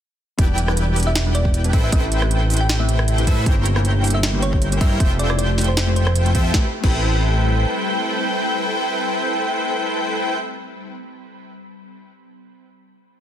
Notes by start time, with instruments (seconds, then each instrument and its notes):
0.38 analog synth bass E1, ambient pad E3 D4 G4, synth keys G3 B3 D4 E4 B4, supersaw synth E4 G4 B4 D5 G5, digital synth lead G5, kick, closed hi-hat
0.58 closed hi-hat
0.67 synth keys G3 B3 D4 E4 B4, cross-stick
0.77 closed hi-hat
0.95 synth keys G3 B3 D4 E4 B4, open hi-hat
1.00 closed hi-hat
1.03 closed hi-hat
1.07 synth pluck E5
1.15 snare, closed hi-hat
1.25 synth keys G3 B3 D4 E4 B4
1.35 synth pluck D5, closed hi-hat
1.45 kick
1.54 closed hi-hat
1.63 synth keys G3 B3 D4 E4 B4, closed hi-hat
1.73 analog synth bass A1, ambient pad C3 G4, supersaw synth E4 A4 B4 C5 G5, synth pluck E5, digital synth lead G5, kick, closed hi-hat
1.84 synth pluck E5
1.91 analog synth bass A1, synth keys A3 C4 E4 G4 B4, supersaw synth E4 A4 B4 C5 G5, synth pluck E5, digital synth lead G5, kick, closed hi-hat
2.12 closed hi-hat
2.21 synth keys A3 C4 E4 G4 B4, cross-stick
2.31 closed hi-hat
2.49 synth keys A3 C4 E4 G4 B4, open hi-hat
2.54 closed hi-hat
2.57 synth pluck G5, closed hi-hat
2.69 snare, closed hi-hat
2.79 synth keys A3 C4 E4 G4 B4, synth pluck E5
2.89 closed hi-hat
2.99 cross-stick
3.08 closed hi-hat
3.17 synth keys A3 C4 E4 G4 B4, closed hi-hat
3.27 analog synth bass A2, supersaw synth E4 A4 B4 C5 E5, digital synth lead E5, kick, closed hi-hat
3.45 analog synth bass G1, ambient pad C#3 A#3 E4, synth keys A#3 C#4 E4 G4 C5, supersaw synth E4 A#4 C5 C#5 G5, digital synth lead G5, kick, closed hi-hat
3.66 closed hi-hat
3.75 synth keys A#3 C#4 E4 G4 C5, cross-stick
3.85 closed hi-hat
4.03 synth keys A#3 C#4 E4 G4 C5, open hi-hat
4.07 closed hi-hat
4.10 closed hi-hat
4.14 synth pluck E5
4.23 snare, closed hi-hat
4.33 synth keys A#3 C#4 E4 G4 C5
4.42 synth pluck C#5, closed hi-hat
4.53 kick
4.62 closed hi-hat
4.71 synth keys A#3 C#4 E4 G4 C5, closed hi-hat
4.81 analog synth bass G2, supersaw synth E4 A#4 C5 C#5 G5, synth pluck E5, digital synth lead G5, kick, closed hi-hat
4.91 synth pluck E5
4.99 analog synth bass F1, synth keys A3 E4 F4 G4 C5, ambient pad A3 G4, supersaw synth F4 A4 C5 E5 G5, digital synth lead G5, kick, closed hi-hat
5.19 synth pluck D5, closed hi-hat
5.29 synth keys A3 E4 F4 G4 C5, synth pluck D5, cross-stick
5.39 synth pluck D5, closed hi-hat
5.57 synth keys A3 E4 F4 G4 C5, snare, open hi-hat
5.61 closed hi-hat
5.64 synth pluck C5, closed hi-hat
5.77 snare, closed hi-hat
5.86 synth keys A3 E4 F4 G4 C5
5.96 synth pluck C5, closed hi-hat
6.07 synth pluck C5, cross-stick
6.16 closed hi-hat
6.25 synth keys A3 E4 F4 G4 C5, closed hi-hat
6.35 analog synth bass F2, supersaw synth F4 A4 C5 E5 G5, digital synth lead G5, kick, closed hi-hat
6.51 analog synth bass A1, ambient pad G3 C4 B5, synth keys A3 C4 E4, supersaw synth E4 B4 C5, digital synth lead G5, kick, snare
6.56 synth keys G4 B5
6.81 analog synth bass A1, synth keys A3 C4 E4, supersaw synth E4 A4 B4 C5 G5, digital synth lead G5, kick, crash
6.85 synth keys G4 B5